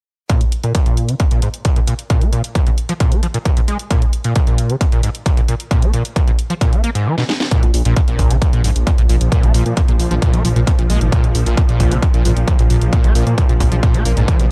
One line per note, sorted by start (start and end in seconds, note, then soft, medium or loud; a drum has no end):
0.30 0.43 A#2 loud
0.30 kick loud
0.30 closed hi-hat medium
0.41 0.45 G#2 medium
0.41 closed hi-hat medium
0.52 closed hi-hat medium
0.64 0.73 A#2 medium
0.64 closed hi-hat medium
0.75 0.78 A#2 loud
0.75 kick loud
0.75 closed hi-hat medium
0.86 1.10 A#2 medium
0.86 closed hi-hat medium
0.97 closed hi-hat medium
1.09 1.15 C#3 loud
1.09 closed hi-hat medium
1.20 kick loud
1.20 closed hi-hat medium
1.31 1.40 A#2 medium
1.31 closed hi-hat medium
1.42 1.49 G#2 medium
1.42 closed hi-hat medium
1.54 closed hi-hat medium
1.65 1.69 A#2 loud
1.65 kick loud
1.65 closed hi-hat medium
1.76 1.80 A#2 medium
1.76 closed hi-hat medium
1.87 1.94 A#2 medium
1.87 closed hi-hat medium
1.99 closed hi-hat medium
2.10 2.23 A#2 loud
2.10 kick loud
2.10 closed hi-hat medium
2.21 2.31 A#3 loud
2.21 closed hi-hat medium
2.33 2.42 A#2 medium
2.33 closed hi-hat medium
2.44 closed hi-hat medium
2.55 2.59 A#2 loud
2.55 kick loud
2.55 closed hi-hat medium
2.67 2.70 A#2 medium
2.67 closed hi-hat medium
2.78 closed hi-hat medium
2.89 2.93 F3 loud
2.89 closed hi-hat medium
3.00 3.13 A#2 loud
3.00 kick loud
3.00 closed hi-hat medium
3.12 3.21 A#3 loud
3.12 closed hi-hat medium
3.23 3.27 F3 medium
3.23 closed hi-hat medium
3.34 3.38 A#2 medium
3.34 closed hi-hat medium
3.45 3.49 A#2 loud
3.45 kick loud
3.45 closed hi-hat medium
3.57 3.60 A#2 medium
3.57 closed hi-hat medium
3.68 3.77 G#3 medium
3.68 closed hi-hat medium
3.79 closed hi-hat medium
3.90 4.03 A#2 loud
3.90 kick loud
3.90 closed hi-hat medium
4.02 4.06 G#2 medium
4.02 closed hi-hat medium
4.13 closed hi-hat medium
4.24 4.34 A#2 medium
4.24 closed hi-hat medium
4.35 kick loud
4.35 closed hi-hat medium
4.47 4.71 A#2 medium
4.47 closed hi-hat medium
4.58 closed hi-hat medium
4.70 4.76 C#3 loud
4.70 closed hi-hat medium
4.81 kick loud
4.81 closed hi-hat medium
4.92 5.01 A#2 medium
4.92 closed hi-hat medium
5.03 5.10 G#2 medium
5.03 closed hi-hat medium
5.15 closed hi-hat medium
5.26 5.30 A#2 loud
5.26 kick loud
5.26 closed hi-hat medium
5.37 5.41 A#2 medium
5.37 closed hi-hat medium
5.48 5.55 A#2 medium
5.48 closed hi-hat medium
5.60 closed hi-hat medium
5.71 5.84 A#2 loud
5.71 kick loud
5.71 closed hi-hat medium
5.82 5.92 A#3 loud
5.82 closed hi-hat medium
5.93 6.03 A#2 medium
5.93 closed hi-hat medium
6.05 closed hi-hat soft
6.16 6.20 A#2 loud
6.16 kick loud
6.16 closed hi-hat medium
6.27 6.31 A#2 medium
6.27 closed hi-hat soft
6.39 closed hi-hat medium
6.50 6.54 F3 loud
6.50 closed hi-hat medium
6.61 6.74 A#2 loud
6.61 kick loud
6.61 closed hi-hat medium
6.72 6.82 A#3 loud
6.72 closed hi-hat medium
6.84 6.90 A#3 medium
6.84 closed hi-hat medium
6.95 7.08 G#2 medium
6.95 closed hi-hat soft
7.06 7.16 F3 medium
7.18 7.24 B2 medium
7.18 snare medium
7.29 7.33 G#3 medium
7.29 snare medium
7.40 snare medium
7.51 7.64 A#2 loud
7.51 14.52 A#2 medium
7.51 14.52 F3 medium
7.51 kick loud
7.51 closed hi-hat medium
7.63 7.71 A#1 medium
7.63 7.66 G#2 medium
7.63 closed hi-hat medium
7.74 7.82 A#1 loud
7.74 open hi-hat loud
7.85 7.93 A#1 medium
7.85 7.95 A#2 medium
7.85 closed hi-hat medium
7.96 8.00 A#2 loud
7.96 kick loud
7.96 closed hi-hat medium
8.08 8.16 A#1 medium
8.08 8.32 A#2 medium
8.08 closed hi-hat medium
8.19 8.27 A#1 loud
8.19 kick medium
8.19 open hi-hat loud
8.31 8.38 A#1 medium
8.31 8.37 C#3 loud
8.31 closed hi-hat medium
8.42 kick loud
8.42 closed hi-hat medium
8.53 8.61 A#1 medium
8.53 8.62 A#2 medium
8.53 closed hi-hat medium
8.64 8.72 A#1 loud
8.64 8.70 G#2 medium
8.64 open hi-hat loud
8.76 8.84 A#1 medium
8.76 closed hi-hat medium
8.87 8.90 A#2 loud
8.87 kick loud
8.87 closed hi-hat medium
8.98 9.06 A#1 medium
8.98 9.02 A#2 medium
8.98 closed hi-hat medium
9.09 9.17 A#1 loud
9.09 9.16 A#2 medium
9.09 open hi-hat loud
9.21 9.29 A#1 medium
9.21 closed hi-hat medium
9.32 9.45 A#2 loud
9.32 kick loud
9.32 closed hi-hat medium
9.43 9.51 A#1 medium
9.43 9.52 A#3 loud
9.43 closed hi-hat medium
9.54 9.63 A#1 loud
9.54 9.64 A#2 medium
9.54 open hi-hat loud
9.66 9.74 A#2 medium
9.66 closed hi-hat medium
9.77 9.81 A#2 loud
9.77 kick loud
9.77 closed hi-hat medium
9.88 9.96 A#1 medium
9.88 9.92 A#2 medium
9.88 closed hi-hat medium
9.99 10.08 A#1 loud
9.99 open hi-hat loud
10.11 10.19 A#1 medium
10.11 10.15 F3 loud
10.11 closed hi-hat medium
10.22 10.35 A#2 loud
10.22 kick loud
10.22 closed hi-hat medium
10.33 10.41 A#1 medium
10.33 10.43 A#3 loud
10.33 closed hi-hat medium
10.45 10.53 A#1 loud
10.45 10.48 F3 medium
10.45 open hi-hat loud
10.56 10.64 A#1 medium
10.56 10.60 A#2 medium
10.56 closed hi-hat medium
10.67 10.71 A#2 loud
10.67 kick loud
10.67 closed hi-hat medium
10.79 10.87 A#1 medium
10.79 10.82 A#2 medium
10.79 closed hi-hat medium
10.90 10.98 A#1 loud
10.90 10.99 G#3 medium
10.90 open hi-hat loud
11.01 11.09 G#1 medium
11.01 closed hi-hat medium
11.12 11.25 A#2 loud
11.12 kick loud
11.12 closed hi-hat medium
11.24 11.32 A#1 medium
11.24 11.27 G#2 medium
11.24 closed hi-hat medium
11.35 11.43 A#1 loud
11.35 open hi-hat loud
11.46 11.54 A#1 medium
11.46 11.55 A#2 medium
11.46 closed hi-hat medium
11.57 11.61 A#2 loud
11.57 kick loud
11.57 closed hi-hat medium
11.69 11.77 A#1 medium
11.69 11.93 A#2 medium
11.69 closed hi-hat medium
11.80 11.88 A#1 loud
11.80 kick medium
11.80 open hi-hat loud
11.91 11.99 A#1 medium
11.91 11.98 C#3 loud
11.91 closed hi-hat medium
12.02 kick loud
12.02 closed hi-hat medium
12.14 12.22 A#1 medium
12.14 12.23 A#2 medium
12.14 closed hi-hat medium
12.25 12.33 A#1 loud
12.25 12.31 G#2 medium
12.25 open hi-hat loud
12.36 12.44 A#1 medium
12.36 closed hi-hat medium
12.47 12.51 A#2 loud
12.47 kick loud
12.47 closed hi-hat medium
12.59 12.67 A#1 medium
12.59 12.63 A#2 medium
12.59 closed hi-hat medium
12.70 12.78 A#1 loud
12.70 12.76 A#2 medium
12.70 open hi-hat loud
12.82 12.90 A#1 medium
12.82 closed hi-hat medium
12.93 13.06 A#2 loud
12.93 kick loud
12.93 closed hi-hat medium
13.04 13.12 A#1 medium
13.04 13.13 A#3 loud
13.04 closed hi-hat medium
13.15 13.23 A#1 loud
13.15 13.25 A#2 medium
13.15 open hi-hat loud
13.27 13.35 A#2 medium
13.27 closed hi-hat medium
13.38 13.42 A#2 loud
13.38 kick loud
13.38 closed hi-hat medium
13.49 13.57 A#1 medium
13.49 13.53 A#2 medium
13.49 closed hi-hat medium
13.60 13.69 A#1 loud
13.60 kick medium
13.60 open hi-hat loud
13.71 13.80 A#1 medium
13.71 13.75 F3 loud
13.71 closed hi-hat medium
13.83 13.96 A#2 loud
13.83 kick loud
13.83 closed hi-hat medium
13.94 14.02 A#1 medium
13.94 14.04 A#3 loud
13.94 closed hi-hat medium
14.05 14.14 A#1 loud
14.05 14.12 A#3 medium
14.05 open hi-hat loud
14.17 14.25 A#1 medium
14.17 14.29 G#2 medium
14.17 closed hi-hat medium
14.28 14.37 F3 medium
14.28 kick loud
14.28 closed hi-hat medium
14.39 14.47 A#1 medium
14.39 14.46 B2 medium
14.39 closed hi-hat medium